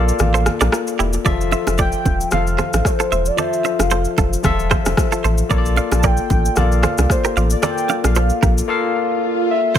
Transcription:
Already playing: sub bass A#1, tine electric piano A#3 F4 A4 D5
0.08 soft synth lead F5, shaker
0.19 sub bass A1, cross-stick, low conga, shaker
0.34 clean electric guitar A4 C5, shaker
0.46 cross-stick, low conga, shaker
0.61 sub bass A#1, clean electric guitar A#4 D5, cross-stick, low bongo, shaker
0.72 clean electric guitar F4 A#4, cross-stick, high bongo, shaker
0.87 shaker
0.99 sub bass E1, clean electric guitar E4 G4, high bongo, shaker
1.13 high bongo, shaker
1.24 sub bass F1, tine electric piano F3 F4 G#4 E5, clean electric guitar A4 D5, kick, low conga, shaker
1.32 tine electric piano A4
1.41 shaker
1.52 clean electric guitar C5 E5, low bongo, shaker
1.67 sub bass F1, cross-stick, low bongo, shaker
1.78 clean electric guitar A4 D5, soft synth lead G5, kick, high bongo, shaker
1.92 shaker
2.05 sub bass E1, kick, low bongo, shaker
2.21 shaker
2.30 sub bass F1, tine electric piano F3 F4 A4 F5, soft synth lead F5, cross-stick, low conga, shaker
2.47 shaker
2.58 clean electric guitar A4 C5, cross-stick, low conga, shaker
2.73 sub bass A1, cross-stick, low bongo, shaker
2.85 soft synth lead C5, kick, cross-stick, high bongo, shaker
3.00 clean electric guitar F4 A4, shaker
3.12 sub bass E1, clean electric guitar C5 E5, high bongo, shaker
3.26 soft synth lead D5, shaker
3.37 tine electric piano F3 F4 A4 C5, clean electric guitar A4 D5, soft synth lead E5, low conga, shaker
3.53 shaker
3.64 clean electric guitar C5 E5, low bongo, shaker
3.79 sub bass F1, soft synth lead F5, cross-stick, low bongo, shaker
3.90 clean electric guitar A4 C5, high bongo, shaker
4.05 shaker
4.18 sub bass F1, clean electric guitar F4 A4, kick, low bongo, shaker
4.33 shaker
4.43 sub bass E1, tine electric piano F3 F4 A4 E5, kick, cross-stick, low conga, shaker
4.59 shaker
4.71 clean electric guitar A4 C5, kick, cross-stick, low conga, shaker
4.85 sub bass F1, cross-stick, low bongo, shaker
4.97 kick, cross-stick, high bongo, shaker
5.12 clean electric guitar F4 A4, shaker
5.24 sub bass A1, clean electric guitar A4 C5, high bongo, shaker
5.38 shaker
5.49 sub bass A#1, tine electric piano A#3 F4 A4 C#5, clean electric guitar A#4 D5, kick, swell, low conga, shaker
5.58 tine electric piano D5
5.66 shaker
5.76 clean electric guitar D5 F5, low bongo, shaker
5.91 sub bass A#1, cross-stick, low bongo, shaker
5.98 soft synth lead A5
6.03 clean electric guitar A#4 D5, soft synth lead G5, kick, high bongo, shaker
6.17 shaker
6.30 sub bass A1, kick, low bongo, shaker
6.45 shaker
6.55 sub bass A#1, tine electric piano A#3 F4 A4 D5, soft synth lead F5, cross-stick, low conga, shaker
6.72 shaker
6.83 clean electric guitar A4 C5, cross-stick, low conga, shaker
6.98 sub bass C2, cross-stick, low bongo, shaker
7.10 soft synth lead C5, kick, cross-stick, high bongo, shaker
7.24 clean electric guitar G4 A#4, shaker
7.36 sub bass A1, clean electric guitar D5 F5, high bongo, shaker
7.50 soft synth lead D5, shaker
7.62 tine electric piano A#3 F4 A4 D5, clean electric guitar A#4 D5, soft synth lead G5, cross-stick, low conga, shaker
7.78 shaker
7.89 clean electric guitar D5 F5, low bongo, shaker
8.04 sub bass A#1, soft synth lead F5, cross-stick, low bongo, shaker
8.15 clean electric guitar A4 C5, high bongo, shaker
8.29 shaker
8.43 sub bass A#1, clean electric guitar G4 A#4, kick, low bongo, shaker
8.58 shaker
8.68 tine electric piano A#3 F4 A4 F5
9.50 soft synth lead E5
9.74 sub bass F1, tine electric piano F3 F4 A4, clean electric guitar C5, kick, downlifter, low conga, shaker

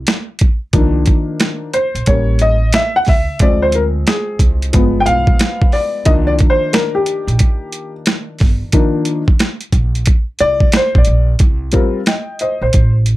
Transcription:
0.07 snare, closed hi-hat
0.39 kick, closed hi-hat
0.73 upright bass C2, upright piano D#3 F3 A#3 D4, kick, closed hi-hat
1.06 kick, closed hi-hat
1.40 snare, closed hi-hat
1.73 upright piano C5, closed hi-hat
1.95 upright bass A#1, closed hi-hat
2.06 upright bass A1, upright piano G3 A#3 C#4 C#5, kick, closed hi-hat
2.39 upright piano D#5, closed hi-hat
2.73 upright piano E5, snare, closed hi-hat
2.96 upright piano F#5
3.05 upright bass C#2, upright piano E5, kick, snare, open hi-hat
3.39 upright bass D2, upright piano F3 G#3 C4 D5, kick, closed hi-hat
3.62 upright piano C5
3.72 upright piano A#4, closed hi-hat
4.07 upright piano G#4, snare, closed hi-hat
4.39 upright bass C2, kick, closed hi-hat
4.62 closed hi-hat
4.73 upright bass G1, upright piano F3 G#3 B3, kick, closed hi-hat
5.00 upright piano G5
5.06 upright bass B1, upright piano F5, closed hi-hat
5.27 kick
5.39 snare, closed hi-hat
5.62 kick
5.72 upright piano D5, open hi-hat
6.05 upright bass C2, upright piano D#3 F3 A#3 D4 D#5, kick, closed hi-hat
6.27 upright piano D5
6.39 kick, closed hi-hat
6.50 upright piano C5
6.73 upright piano A#4, snare, closed hi-hat
6.95 upright piano G4
7.06 closed hi-hat
7.27 upright bass A#1, closed hi-hat
7.39 kick, closed hi-hat
7.72 closed hi-hat
8.06 snare, closed hi-hat
8.39 upright bass G1, kick, snare, open hi-hat
8.72 upright piano D#3 F3 A#3 D4, kick, closed hi-hat
9.05 closed hi-hat
9.28 kick
9.39 snare, closed hi-hat
9.61 closed hi-hat
9.72 upright bass A#1, kick, closed hi-hat
9.95 closed hi-hat
10.06 kick, closed hi-hat
10.39 upright bass C2, upright piano D5, closed hi-hat
10.60 kick
10.72 snare, closed hi-hat
10.77 upright piano C5
10.95 upright bass A#1, upright piano D5, kick
11.05 upright bass A#1, closed hi-hat
11.39 upright bass C2, kick, closed hi-hat
11.72 upright piano G3 C4 F4 A#4, kick, closed hi-hat
12.06 upright piano D#5 G5, snare, closed hi-hat
12.39 upright piano C5 D#5, closed hi-hat
12.61 upright bass A#1, upright piano C5
12.73 upright bass A1, kick, closed hi-hat
13.06 closed hi-hat

